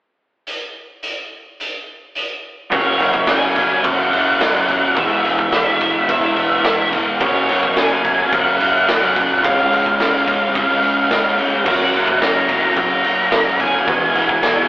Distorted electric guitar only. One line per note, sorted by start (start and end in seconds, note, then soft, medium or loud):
2.71 3.26 F#2 medium
2.71 3.01 C#3 loud
2.71 2.99 F#3 loud
2.99 3.28 C#3 medium
2.99 3.30 F#3 medium
3.28 3.82 F#2 medium
3.28 3.57 C#3 medium
3.28 3.55 F#3 medium
3.56 3.83 C#3 medium
3.56 3.86 F#3 medium
3.83 4.39 F#2 medium
3.83 4.13 C#3 loud
3.83 4.11 F#3 loud
4.11 4.40 C#3 medium
4.11 4.43 F#3 medium
4.40 4.95 F#2 medium
4.40 4.69 C#3 medium
4.40 4.67 F#3 medium
4.67 4.96 C#3 medium
4.67 4.98 F#3 medium
4.95 5.50 E2 medium
4.95 5.25 B2 loud
4.95 5.22 E3 medium
5.24 5.52 B2 medium
5.24 5.53 E3 medium
5.51 6.06 E2 medium
5.51 5.81 B2 medium
5.51 5.78 E3 medium
5.79 6.08 B2 medium
5.79 6.10 E3 medium
6.07 6.62 E2 medium
6.07 6.37 B2 medium
6.07 6.34 E3 loud
6.35 6.64 B2 medium
6.35 6.65 E3 medium
6.64 7.18 E2 medium
6.64 6.94 B2 medium
6.64 6.91 E3 medium
6.92 7.20 B2 medium
6.92 7.19 E3 medium
7.20 7.75 F#2 loud
7.20 7.50 C#3 medium
7.20 7.47 F#3 loud
7.48 7.77 C#3 medium
7.48 7.78 F#3 medium
7.77 8.31 F#2 medium
7.77 8.06 C#3 medium
7.77 8.03 F#3 medium
8.04 8.33 C#3 medium
8.04 8.34 F#3 medium
8.32 8.86 F#2 loud
8.32 8.62 C#3 medium
8.32 8.59 F#3 loud
8.60 8.88 C#3 medium
8.60 8.89 F#3 medium
8.88 9.42 F#2 medium
8.88 9.18 C#3 medium
8.88 9.15 F#3 medium
9.16 9.41 C#3 medium
9.16 9.42 F#3 medium
9.43 9.98 C#3 loud
9.43 9.73 G#3 loud
9.43 9.70 C#4 loud
9.71 9.99 G#3 medium
9.71 10.01 C#4 medium
9.99 10.54 C#3 medium
9.99 10.28 G#3 medium
9.99 10.27 C#4 medium
10.27 10.55 G#3 medium
10.27 10.57 C#4 medium
10.55 11.09 C#3 medium
10.55 10.85 G#3 loud
10.55 10.82 C#4 loud
10.83 11.10 G#3 medium
10.83 11.12 C#4 medium
11.10 11.64 C#3 medium
11.10 11.39 G#3 medium
11.10 11.36 C#4 medium
11.37 11.66 G#3 medium
11.37 11.64 C#4 medium
11.65 12.19 F#2 loud
11.65 11.95 C#3 medium
11.65 11.93 F#3 loud
11.93 12.21 C#3 medium
11.93 12.23 F#3 medium
12.20 12.74 F#2 medium
12.20 12.50 C#3 medium
12.20 12.48 F#3 medium
12.48 12.76 C#3 medium
12.48 12.78 F#3 medium
12.75 13.29 F#2 loud
12.75 13.05 C#3 loud
12.75 13.02 F#3 loud
13.03 13.31 C#3 medium
13.03 13.33 F#3 medium
13.30 13.86 F#2 medium
13.30 13.60 C#3 medium
13.30 13.58 F#3 medium
13.58 13.87 C#3 medium
13.58 13.89 F#3 medium
13.86 14.41 E2 loud
13.86 14.16 B2 loud
13.86 14.12 E3 loud
14.14 14.42 B2 medium
14.14 14.44 E3 medium
14.42 14.68 E2 medium
14.42 14.68 B2 medium
14.42 14.68 E3 medium